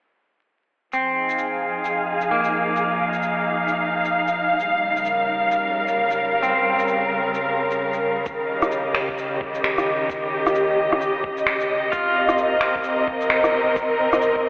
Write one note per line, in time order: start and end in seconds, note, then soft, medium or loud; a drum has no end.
0.93 4.60 F3 medium
0.93 2.22 C4 soft
0.93 shaker medium
1.04 4.60 G#4 medium
1.12 6.08 D#4 medium
1.30 9.21 F5 medium
1.30 shaker soft
1.38 shaker soft
1.85 shaker medium
2.21 shaker soft
2.31 3.60 A#3 soft
2.44 shaker medium
2.76 shaker medium
3.13 shaker medium
3.22 shaker medium
3.68 shaker medium
4.05 shaker soft
4.27 shaker medium
4.60 8.27 G3 medium
4.60 shaker medium
4.80 11.93 C#3 medium
4.96 shaker soft
5.02 9.75 A#4 medium
5.02 shaker medium
5.51 shaker medium
5.88 shaker soft
6.11 shaker soft
6.43 7.71 C4 medium
6.43 shaker soft
6.79 shaker soft
6.88 shaker soft
7.34 shaker medium
7.71 shaker soft
7.93 shaker soft
8.26 11.93 D#3 medium
8.26 kick loud
8.26 shaker soft
8.45 14.49 D#5 medium
8.50 13.42 G4 medium
8.62 cross-stick medium
8.62 shaker soft
8.71 shaker soft
8.95 finger snap medium
9.09 kick medium
9.18 shaker medium
9.41 kick medium
9.55 shaker soft
9.64 finger snap medium
9.78 cross-stick medium
9.78 shaker soft
10.10 kick loud
10.10 shaker soft
10.47 cross-stick medium
10.47 shaker soft
10.55 shaker soft
10.92 cross-stick medium
11.01 shaker medium
11.24 kick medium
11.38 shaker soft
11.47 finger snap medium
11.60 shaker medium
11.92 14.49 C3 medium
11.92 13.21 F4 medium
11.92 kick loud
11.92 shaker soft
12.14 14.49 C4 medium
12.26 14.49 A#4 medium
12.26 cross-stick medium
12.26 shaker medium
12.38 shaker medium
12.61 finger snap medium
12.76 kick medium
12.84 shaker medium
13.08 kick medium
13.21 shaker medium
13.30 finger snap medium
13.44 cross-stick medium
13.44 shaker medium
13.76 kick loud
13.76 shaker soft
14.13 cross-stick medium
14.13 shaker soft
14.22 shaker medium
14.36 kick medium